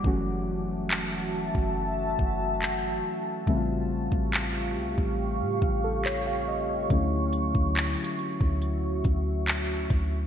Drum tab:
HH |------------------------------------------------|------------------------------------------------|x-----x-----x-x-x-x-----x-----x-----x-----x-----|
CP |------------x-----------------------x-----------|------------x-----------------------x-----------|------------x-----------------------x-----------|
BD |o--------------------o--------o-----------------|o--------o-----------o--------o-----------------|o--------o-----------o--------o-----------o-----|